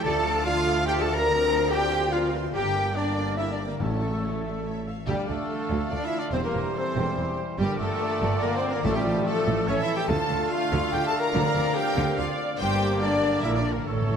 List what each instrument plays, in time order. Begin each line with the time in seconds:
Already playing: harp A3 A4
0.02 double bass section D2, harp D3, trombone section F3 A3, viola section F4 D5, french horn section A4, cello section A4, cor anglais A4, violin section D5 A5, flute A5, trumpet A5
0.14 harp D4
0.24 harp A3, viola section A4 F5, violin section F5 D6
0.35 harp F4
0.44 trombone section F3 A3, cello section F4, french horn section F4, cor anglais F4, viola section F4 D5, harp D5, violin section D5 F5 A5, flute F5, trumpet F5
0.66 viola section A4 F5, violin section F5 D6
0.78 harp D6
0.86 viola section F4 D5, french horn section G4, cor anglais G4, cello section G4, violin section D5 G5 A5, flute G5, trumpet G5
0.99 cor anglais A4, cello section A4, french horn section A4, harp D5, flute A5, violin section A5, trumpet A5
1.07 harp F4, viola section A4 F5, violin section F5 D6
1.13 french horn section A#4, cello section A#4, cor anglais A#4, flute A#5, violin section A#5, trumpet A#5
1.19 harp D4
1.28 harp D3, trombone section F3 C4, viola section A#4 D5, violin section D5 A#5
1.40 harp A#3
1.48 harp C4, viola section A#4 C5, violin section F5 C6
1.60 harp F4
1.69 cor anglais G4, cello section G4, french horn section G4, viola section A#4 D5, violin section D5 G5 A#5, harp D5, flute G5, trumpet G5
1.80 harp C5
1.90 viola section A#4 C5, harp F5, violin section F5 C6
2.11 trombone section F3 C4, french horn section F4, cello section F4, cor anglais F4, viola section A#4 D5, violin section D5 F5 A#5, flute F5, harp F5, trumpet F5
2.23 harp D5
2.33 trombone section E3, harp F4, viola section A#4 C5, violin section F5 C6
2.44 harp A#3
2.54 double bass section G1, harp G2, trombone section D3 A#3, french horn section G4, cello section G4, cor anglais G4, viola section A#4 D5, flute G5, trumpet G5, violin section G5 A#5
2.63 harp D3
2.75 harp A#3, viola section A#4 D5, violin section G5 D6
2.95 trombone section A#3, french horn section D4, cor anglais D4, cello section D4, viola section A#4 D5, flute D5, trumpet D5, violin section D5 A#5
3.07 harp A#4
3.17 viola section A#4 D5, harp G5, violin section G5 D6
3.37 french horn section E4, cor anglais E4, cello section E4, viola section A#4 D5, flute E5, trumpet E5, violin section E5 A#5, harp G5
3.48 harp D5, trumpet D5
3.52 cello section D4, cor anglais D4, french horn section D4, violin section D5, flute D5
3.59 harp G4, viola section A#4 D5, violin section G5 D6
3.66 cello section A#3, french horn section A#3, cor anglais A#3, trumpet A#4, flute A#4, violin section A#4
3.70 harp D3
3.79 double bass section A1, timpani A2, harp A2, trombone section C#3 A3, french horn section A3, cello section A3, cor anglais A3, viola section E4 C#5, trumpet A4, violin section A4 C#5 A5, flute A4
3.91 harp E3
4.01 harp A3, viola section A4 E5, violin section E5 C#6
4.12 harp E4
4.22 viola section E4 C#5, violin section C#5, harp C#5
4.34 harp A4
4.44 viola section A4 E5, violin section D5, harp E5
4.56 harp C#6
4.65 viola section E4 C#5, violin section E5, harp E5
4.77 harp C#5
4.87 harp E4, viola section A4 E5, violin section F5
4.98 harp E3
5.07 cello section D2, double bass section D2, trombone section D3 A3, harp D3, cor anglais G3, french horn section G3, flute G4, violin section G4, viola section D5, trumpet F5
5.19 harp D4
5.28 double bass section D2, cello section D2, cor anglais A3, french horn section A3, harp A3, violin section A4, flute A4
5.41 harp F4
5.50 viola section A4, harp D5
5.61 harp A4
5.70 cello section D2, double bass section D2, harp F5
5.82 harp D6
5.91 double bass section D2, cello section D2, cor anglais D4, french horn section D4, viola section F4, violin section D5, flute D5, harp F5
6.03 cor anglais E4, french horn section E4, harp D5, violin section E5, flute E5
6.14 harp F4
6.18 cor anglais D4, french horn section D4, violin section D5, flute D5
6.23 harp D4
6.31 double bass section E1, cello section E2, harp E3, trombone section E3 G3, cor anglais C4, french horn section C4, viola section G4, violin section C5, flute C5, trumpet C5
6.42 french horn section A#3, cor anglais A#3, harp E4, violin section A#4, flute A#4
6.54 double bass section E1, cello section E2, harp G3
6.65 harp G4
6.74 cor anglais C4, french horn section C4, viola section A4, violin section C5, harp C5, flute C5
6.87 harp G4
6.96 double bass section E1, cello section E2, harp G5
7.08 harp C6
7.16 double bass section E1, cello section E2, viola section G4, harp G5
7.29 harp C5
7.40 harp G4
7.50 harp E4
7.58 double bass section G1, cello section G2, harp G2, trombone section A#2 D3, cor anglais G3, french horn section G3, violin section G4, flute G4, viola section A#4, trumpet D5
7.71 harp D3
7.78 double bass section G1, cello section G2, cor anglais A3, french horn section A3, harp D4, violin section A4, flute A4
7.92 harp G4
8.01 viola section D5, harp D5
8.21 double bass section G1, cello section G2, harp G5
8.33 harp D6
8.41 double bass section G1, cello section G2, cor anglais A#3, french horn section A#3, violin section A#4, flute A#4, harp G5
8.54 cor anglais C4, violin section C5, flute C5, harp D5
8.59 french horn section C4
8.64 harp G4
8.69 cor anglais A#3, violin section A#4, flute A#4
8.73 harp D3, french horn section A#3
8.84 double bass section A1, cello section A2, timpani A2, harp A2, trombone section F3 A3, cor anglais A3, french horn section A3, viola section F4, violin section A4, flute A4
8.94 harp F3, cor anglais G3, french horn section G3, violin section G4, flute G4
9.05 double bass section A1, cello section A2, harp A3
9.16 harp F4
9.25 cor anglais A3, french horn section A3, violin section A4, viola section A4, flute A4, harp D5
9.47 double bass section A1, cello section A2
9.57 harp D6
9.67 double bass section A1, harp A2, cello section A2, trombone section E3, cor anglais C#4, french horn section C#4, viola section A4, flute C#5, violin section C#5, trumpet E5
9.79 harp E3, cor anglais E4, violin section E5
9.83 french horn section E4, flute E5
9.89 harp A3
9.96 harp E4, cor anglais G4, french horn section G4, violin section G5, flute G5
10.08 double bass section D2, cello section D3, trombone section D3 A3, harp D3, viola section F4, french horn section A4, cor anglais A4, trumpet F5, flute A5, violin section A5
10.20 harp D4
10.30 double bass section D2, cello section D3, harp A3
10.40 harp F4
10.50 french horn section F4, cor anglais F4, harp D5, flute F5, violin section F5
10.61 harp A4
10.72 double bass section D2, cello section D3
10.82 harp D6
10.91 double bass section D2, cello section D3, cor anglais G4, french horn section G4, harp F5, flute G5, violin section G5
11.04 cor anglais A4, harp D5, flute A5, violin section A5
11.08 french horn section A4
11.14 harp F4
11.20 cor anglais A#4, french horn section A#4, flute A#5, violin section A#5
11.24 harp D4
11.34 double bass section D2, cello section D3, timpani D3, harp D3, trombone section C4, viola section D5
11.55 double bass section D2, cello section D3, harp C4
11.67 harp F4
11.76 french horn section G4, cor anglais G4, viola section A#4, harp D5, flute G5, violin section G5
11.87 harp C5
11.96 double bass section D2, cello section D3, harp F5
12.08 harp D6
12.17 double bass section D2, cello section D3, french horn section F4, cor anglais F4, viola section D5, violin section F5, flute F5
12.29 harp D5
12.39 harp F4
12.50 harp A#3
12.58 double bass section G1, cello section G2, harp G2, trombone section D3 A#3, french horn section G4, cor anglais G4, viola section C5, trumpet D5, violin section G5, flute G5
12.70 harp D3
12.80 harp A#3
13.00 french horn section D4, cor anglais D4, viola section A#4, violin section D5, flute D5, harp D5
13.12 harp A#4
13.23 harp G5
13.41 double bass section A#1, cello section A#2, french horn section E4, cor anglais E4, violin section E5, flute E5, harp G5
13.54 harp D5, violin section D5
13.58 cor anglais D4, french horn section D4, flute D5
13.66 harp G4
13.70 cor anglais A#3, french horn section A#3, violin section A#4, flute A#4
13.76 harp D3
13.85 double bass section A1, cello section A2, timpani A2, harp A2, trombone section E3 A3, french horn section A3, cor anglais A3, violin section A4, flute A4, viola section A4, trumpet C#5
13.95 timpani A2, harp E3
14.02 timpani A2
14.09 timpani A2, harp A3